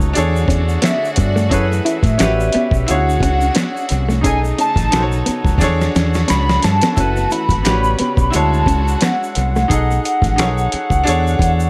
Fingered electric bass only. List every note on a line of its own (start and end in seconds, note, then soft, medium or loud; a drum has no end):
0.00 0.12 C#2 medium
0.18 0.44 E2 loud
0.49 0.77 E2 loud
1.18 1.52 G2 medium
1.52 1.80 F#2 loud
2.04 2.16 A2 medium
2.21 2.48 A1 loud
2.56 muted fingered electric bass stroke medium
2.72 2.85 B1 loud
2.90 3.17 D2 loud
3.22 3.50 C#2 medium
3.92 4.24 C2 loud
4.24 4.52 B1 loud
4.77 4.89 A1 medium
4.94 5.21 B1 medium
5.29 muted fingered electric bass stroke soft
5.45 5.58 C#2 medium
5.58 5.87 E2 medium
5.96 6.23 E2 medium
6.31 6.58 C#2 medium
6.65 6.80 G2 medium
6.98 7.25 F#1 loud
7.49 7.62 G#1 medium
7.67 7.94 A1 loud
8.01 muted fingered electric bass stroke soft
8.18 8.30 B1 medium
8.35 8.62 D2 loud
8.67 8.95 C#2 loud
9.37 9.64 C2 medium
9.71 9.98 B1 loud
10.23 10.39 A1 medium
10.39 10.67 B1 medium
10.74 muted fingered electric bass stroke medium
10.91 11.03 C#2 medium
11.08 11.35 E2 loud
11.40 11.68 E2 loud